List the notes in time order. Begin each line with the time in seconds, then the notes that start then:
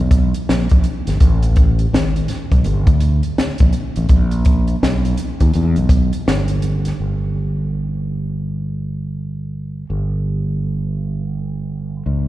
0.00 B1
0.11 kick, closed hi-hat
0.34 closed hi-hat
0.49 A#1, snare
0.69 A#1, kick, closed hi-hat
0.84 closed hi-hat
1.07 G1, snare, closed hi-hat
1.20 A1, kick, closed hi-hat
1.43 closed hi-hat
1.56 kick, closed hi-hat
1.79 closed hi-hat
1.93 G#1, snare
2.16 closed hi-hat
2.28 muted fretless electric bass stroke, snare, closed hi-hat
2.52 B1, kick, closed hi-hat
2.64 G1, closed hi-hat
2.87 D2, kick, closed hi-hat
3.00 closed hi-hat
3.23 closed hi-hat
3.38 muted fretless electric bass stroke, snare
3.58 A#1, kick, closed hi-hat
3.73 closed hi-hat
3.96 A1, closed hi-hat
4.09 A#1, kick, closed hi-hat
4.31 closed hi-hat
4.45 kick, closed hi-hat
4.68 closed hi-hat
4.83 B1, snare
5.05 closed hi-hat
5.17 muted fretless electric bass stroke, closed hi-hat
5.40 D#2, kick, closed hi-hat
5.53 E2, closed hi-hat
5.76 B1, closed hi-hat
5.89 kick, closed hi-hat
6.13 closed hi-hat
6.28 G1, snare
6.48 closed hi-hat
6.62 closed hi-hat
6.85 snare, closed hi-hat
7.00 G1
9.90 G1
12.06 C#2